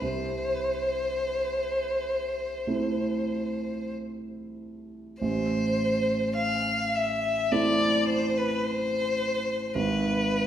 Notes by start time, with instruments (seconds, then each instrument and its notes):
0.01 grand piano C2, violin C5
2.67 grand piano A3 C4 E4
5.21 grand piano A1, violin C5
6.36 violin F5
6.95 violin E5
7.52 grand piano A3 C4 E4, violin D5
8.08 violin C5
8.37 violin B4
8.64 violin C5
9.75 grand piano G#1, violin B4